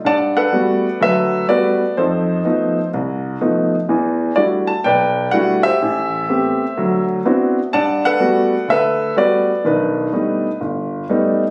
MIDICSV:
0, 0, Header, 1, 2, 480
1, 0, Start_track
1, 0, Tempo, 480384
1, 41, Time_signature, 4, 2, 24, 8
1, 11496, End_track
2, 0, Start_track
2, 0, Title_t, "Grand piano"
2, 0, Program_c, 0, 0
2, 47, Note_on_c, 0, 43, 67
2, 64, Note_on_c, 0, 81, 92
2, 65, Note_on_c, 0, 78, 69
2, 68, Note_on_c, 0, 74, 73
2, 132, Note_off_c, 0, 81, 0
2, 351, Note_off_c, 0, 78, 0
2, 366, Note_on_c, 0, 78, 94
2, 371, Note_on_c, 0, 69, 67
2, 376, Note_on_c, 0, 71, 69
2, 460, Note_off_c, 0, 43, 0
2, 524, Note_on_c, 0, 55, 55
2, 524, Note_on_c, 0, 57, 49
2, 528, Note_on_c, 0, 59, 51
2, 533, Note_on_c, 0, 66, 53
2, 854, Note_off_c, 0, 55, 0
2, 854, Note_off_c, 0, 57, 0
2, 856, Note_off_c, 0, 59, 0
2, 859, Note_off_c, 0, 66, 0
2, 975, Note_off_c, 0, 74, 0
2, 1006, Note_on_c, 0, 38, 65
2, 1006, Note_on_c, 0, 54, 65
2, 1015, Note_off_c, 0, 71, 0
2, 1023, Note_off_c, 0, 69, 0
2, 1024, Note_on_c, 0, 76, 102
2, 1025, Note_off_c, 0, 78, 0
2, 1030, Note_on_c, 0, 71, 73
2, 1038, Note_on_c, 0, 69, 73
2, 1420, Note_off_c, 0, 38, 0
2, 1420, Note_off_c, 0, 54, 0
2, 1460, Note_off_c, 0, 76, 0
2, 1485, Note_on_c, 0, 55, 53
2, 1486, Note_off_c, 0, 71, 0
2, 1486, Note_on_c, 0, 74, 92
2, 1487, Note_on_c, 0, 57, 52
2, 1491, Note_on_c, 0, 59, 50
2, 1495, Note_on_c, 0, 66, 65
2, 1501, Note_on_c, 0, 71, 68
2, 1815, Note_off_c, 0, 55, 0
2, 1816, Note_off_c, 0, 57, 0
2, 1818, Note_off_c, 0, 59, 0
2, 1820, Note_off_c, 0, 66, 0
2, 1938, Note_off_c, 0, 71, 0
2, 1940, Note_off_c, 0, 69, 0
2, 1972, Note_on_c, 0, 72, 75
2, 1975, Note_on_c, 0, 41, 65
2, 1978, Note_off_c, 0, 74, 0
2, 1985, Note_on_c, 0, 63, 50
2, 1986, Note_on_c, 0, 69, 53
2, 2384, Note_off_c, 0, 41, 0
2, 2437, Note_off_c, 0, 63, 0
2, 2443, Note_on_c, 0, 53, 48
2, 2446, Note_on_c, 0, 57, 45
2, 2448, Note_on_c, 0, 59, 47
2, 2452, Note_on_c, 0, 63, 60
2, 2774, Note_off_c, 0, 53, 0
2, 2775, Note_off_c, 0, 57, 0
2, 2777, Note_off_c, 0, 59, 0
2, 2778, Note_off_c, 0, 63, 0
2, 2887, Note_off_c, 0, 72, 0
2, 2894, Note_off_c, 0, 69, 0
2, 2934, Note_on_c, 0, 36, 64
2, 3344, Note_off_c, 0, 36, 0
2, 3404, Note_on_c, 0, 53, 52
2, 3410, Note_on_c, 0, 57, 48
2, 3410, Note_on_c, 0, 59, 52
2, 3410, Note_on_c, 0, 63, 61
2, 3734, Note_off_c, 0, 53, 0
2, 3737, Note_off_c, 0, 57, 0
2, 3737, Note_off_c, 0, 59, 0
2, 3737, Note_off_c, 0, 63, 0
2, 3884, Note_on_c, 0, 40, 64
2, 3891, Note_on_c, 0, 52, 61
2, 4298, Note_off_c, 0, 40, 0
2, 4302, Note_off_c, 0, 52, 0
2, 4354, Note_on_c, 0, 74, 81
2, 4361, Note_on_c, 0, 57, 48
2, 4364, Note_on_c, 0, 55, 50
2, 4367, Note_on_c, 0, 64, 50
2, 4369, Note_on_c, 0, 62, 48
2, 4374, Note_on_c, 0, 66, 53
2, 4425, Note_off_c, 0, 74, 0
2, 4670, Note_on_c, 0, 81, 92
2, 4692, Note_off_c, 0, 57, 0
2, 4694, Note_off_c, 0, 55, 0
2, 4695, Note_off_c, 0, 64, 0
2, 4697, Note_off_c, 0, 62, 0
2, 4699, Note_off_c, 0, 66, 0
2, 4840, Note_on_c, 0, 79, 97
2, 4843, Note_off_c, 0, 81, 0
2, 4845, Note_on_c, 0, 35, 60
2, 4858, Note_on_c, 0, 74, 72
2, 4861, Note_on_c, 0, 71, 72
2, 5258, Note_off_c, 0, 35, 0
2, 5310, Note_on_c, 0, 78, 99
2, 5325, Note_on_c, 0, 55, 52
2, 5328, Note_on_c, 0, 62, 51
2, 5330, Note_on_c, 0, 57, 53
2, 5334, Note_off_c, 0, 79, 0
2, 5334, Note_on_c, 0, 64, 49
2, 5334, Note_on_c, 0, 66, 62
2, 5607, Note_off_c, 0, 78, 0
2, 5629, Note_on_c, 0, 76, 108
2, 5647, Note_on_c, 0, 67, 61
2, 5650, Note_on_c, 0, 72, 66
2, 5654, Note_off_c, 0, 55, 0
2, 5655, Note_off_c, 0, 62, 0
2, 5657, Note_off_c, 0, 57, 0
2, 5658, Note_off_c, 0, 64, 0
2, 5659, Note_off_c, 0, 66, 0
2, 5768, Note_off_c, 0, 74, 0
2, 5770, Note_off_c, 0, 71, 0
2, 5815, Note_on_c, 0, 33, 71
2, 6223, Note_off_c, 0, 33, 0
2, 6282, Note_off_c, 0, 67, 0
2, 6287, Note_on_c, 0, 57, 50
2, 6289, Note_on_c, 0, 59, 47
2, 6291, Note_on_c, 0, 60, 47
2, 6297, Note_on_c, 0, 67, 61
2, 6615, Note_off_c, 0, 57, 0
2, 6616, Note_off_c, 0, 59, 0
2, 6617, Note_off_c, 0, 60, 0
2, 6620, Note_off_c, 0, 67, 0
2, 6768, Note_on_c, 0, 38, 63
2, 6770, Note_on_c, 0, 54, 62
2, 7031, Note_off_c, 0, 76, 0
2, 7041, Note_off_c, 0, 72, 0
2, 7179, Note_off_c, 0, 38, 0
2, 7180, Note_off_c, 0, 54, 0
2, 7248, Note_on_c, 0, 59, 56
2, 7248, Note_on_c, 0, 60, 52
2, 7250, Note_on_c, 0, 62, 51
2, 7253, Note_on_c, 0, 64, 48
2, 7255, Note_on_c, 0, 66, 65
2, 7575, Note_off_c, 0, 59, 0
2, 7575, Note_off_c, 0, 60, 0
2, 7576, Note_off_c, 0, 62, 0
2, 7577, Note_off_c, 0, 64, 0
2, 7578, Note_off_c, 0, 66, 0
2, 7726, Note_on_c, 0, 81, 102
2, 7729, Note_on_c, 0, 43, 69
2, 7735, Note_on_c, 0, 74, 72
2, 7736, Note_on_c, 0, 78, 74
2, 8032, Note_off_c, 0, 78, 0
2, 8046, Note_off_c, 0, 81, 0
2, 8047, Note_on_c, 0, 78, 114
2, 8058, Note_on_c, 0, 69, 65
2, 8060, Note_on_c, 0, 71, 70
2, 8139, Note_off_c, 0, 43, 0
2, 8193, Note_on_c, 0, 55, 54
2, 8194, Note_on_c, 0, 57, 50
2, 8199, Note_on_c, 0, 59, 48
2, 8204, Note_on_c, 0, 66, 63
2, 8527, Note_off_c, 0, 55, 0
2, 8527, Note_off_c, 0, 57, 0
2, 8530, Note_off_c, 0, 59, 0
2, 8533, Note_off_c, 0, 66, 0
2, 8647, Note_off_c, 0, 74, 0
2, 8674, Note_on_c, 0, 38, 63
2, 8694, Note_on_c, 0, 76, 104
2, 8697, Note_off_c, 0, 69, 0
2, 8701, Note_off_c, 0, 71, 0
2, 8704, Note_off_c, 0, 78, 0
2, 8712, Note_on_c, 0, 69, 73
2, 8716, Note_on_c, 0, 71, 78
2, 9092, Note_off_c, 0, 38, 0
2, 9133, Note_off_c, 0, 76, 0
2, 9156, Note_on_c, 0, 55, 55
2, 9160, Note_on_c, 0, 59, 51
2, 9163, Note_on_c, 0, 57, 50
2, 9165, Note_on_c, 0, 66, 64
2, 9171, Note_on_c, 0, 74, 94
2, 9180, Note_off_c, 0, 71, 0
2, 9195, Note_on_c, 0, 71, 63
2, 9489, Note_off_c, 0, 55, 0
2, 9491, Note_off_c, 0, 59, 0
2, 9493, Note_off_c, 0, 57, 0
2, 9493, Note_off_c, 0, 66, 0
2, 9615, Note_off_c, 0, 69, 0
2, 9625, Note_off_c, 0, 71, 0
2, 9637, Note_on_c, 0, 51, 68
2, 9640, Note_on_c, 0, 35, 62
2, 9652, Note_on_c, 0, 71, 70
2, 9659, Note_off_c, 0, 74, 0
2, 9667, Note_on_c, 0, 63, 52
2, 9669, Note_on_c, 0, 62, 51
2, 10054, Note_off_c, 0, 51, 0
2, 10056, Note_off_c, 0, 35, 0
2, 10113, Note_off_c, 0, 63, 0
2, 10118, Note_on_c, 0, 55, 51
2, 10118, Note_on_c, 0, 57, 47
2, 10123, Note_on_c, 0, 59, 50
2, 10128, Note_on_c, 0, 63, 59
2, 10450, Note_off_c, 0, 55, 0
2, 10451, Note_off_c, 0, 57, 0
2, 10453, Note_off_c, 0, 59, 0
2, 10456, Note_off_c, 0, 63, 0
2, 10566, Note_off_c, 0, 71, 0
2, 10575, Note_off_c, 0, 62, 0
2, 10596, Note_on_c, 0, 31, 64
2, 11014, Note_off_c, 0, 31, 0
2, 11085, Note_on_c, 0, 55, 57
2, 11087, Note_on_c, 0, 57, 51
2, 11093, Note_on_c, 0, 59, 50
2, 11095, Note_on_c, 0, 63, 65
2, 11415, Note_off_c, 0, 55, 0
2, 11416, Note_off_c, 0, 57, 0
2, 11419, Note_off_c, 0, 59, 0
2, 11420, Note_off_c, 0, 63, 0
2, 11496, End_track
0, 0, End_of_file